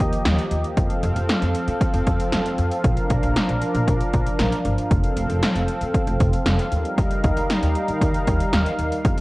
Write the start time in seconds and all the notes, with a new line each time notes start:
Already playing: F3 A#3 G4 D#5
0.00 D#2, kick, closed hi-hat
0.13 closed hi-hat
0.25 D#2, snare, closed hi-hat
0.39 closed hi-hat
0.51 D#2, closed hi-hat
0.64 closed hi-hat
0.77 F2 C4 A4 F5, kick, closed hi-hat
0.90 closed hi-hat
1.03 F2, closed hi-hat
1.16 F2, closed hi-hat
1.29 snare, closed hi-hat
1.42 F2, closed hi-hat
1.55 closed hi-hat
1.68 F3, closed hi-hat
1.81 kick, closed hi-hat
1.94 F2, closed hi-hat
2.06 F2, kick, closed hi-hat
2.20 closed hi-hat
2.32 F2, snare, closed hi-hat
2.46 closed hi-hat
2.58 F2, closed hi-hat
2.71 closed hi-hat
2.84 A#1 D4 A#4, kick, closed hi-hat
2.97 closed hi-hat
3.10 A#1, kick, closed hi-hat
3.23 A#1, closed hi-hat
3.36 snare, closed hi-hat
3.49 A#1, closed hi-hat
3.61 closed hi-hat
3.75 A#2, closed hi-hat
3.88 A#1, kick, closed hi-hat
4.01 closed hi-hat
4.13 A#1, kick, closed hi-hat
4.27 closed hi-hat
4.39 A#1, snare, closed hi-hat
4.52 closed hi-hat
4.65 G1, closed hi-hat
4.78 closed hi-hat
4.91 F1 C4 A4 F5, kick, closed hi-hat
5.04 closed hi-hat
5.17 F1, closed hi-hat
5.30 F1, closed hi-hat
5.43 snare, closed hi-hat
5.56 F1, closed hi-hat
5.68 closed hi-hat
5.81 F2, closed hi-hat
5.95 kick, closed hi-hat
6.07 F1, closed hi-hat
6.20 F1, kick, closed hi-hat
6.33 closed hi-hat
6.46 F1, snare, closed hi-hat
6.59 closed hi-hat
6.72 D#2 G3 D#4 A#4, closed hi-hat
6.85 closed hi-hat
6.98 D#2, kick, closed hi-hat
7.11 closed hi-hat
7.24 D#2, kick, closed hi-hat
7.37 D#2, closed hi-hat
7.50 snare, closed hi-hat
7.62 D#2, closed hi-hat
7.75 closed hi-hat
7.88 D#3, closed hi-hat
8.01 D#2, kick, closed hi-hat
8.14 closed hi-hat
8.27 D#2, kick, closed hi-hat
8.40 closed hi-hat
8.53 D#2, snare, closed hi-hat
8.66 closed hi-hat
8.79 D#2, closed hi-hat
8.92 closed hi-hat
9.05 F2 F3 C4 A4, kick, closed hi-hat
9.18 closed hi-hat